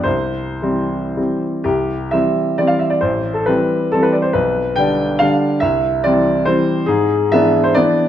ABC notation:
X:1
M:3/4
L:1/16
Q:1/4=138
K:C
V:1 name="Grand piano"
c8- c2 z2 | G4 e4 d f e d | c3 A B4 A B d c | B4 g4 f4 |
e4 d4 c4 | [K:Ephr] ^G4 e3 c d4 |]
V:2 name="Grand piano" clef=bass
C,,4 [E,G,C]4 [E,G,C]4 | C,,4 [E,G,C]4 [E,G,C]4 | A,,,4 [E,G,C]4 [E,G,C]4 | B,,,4 [D,G,D]4 [D,G,D]4 |
C,,4 [E,G,C]4 [E,G,C]4 | [K:Ephr] ^G,,4 [E,B,D]4 [E,B,D]4 |]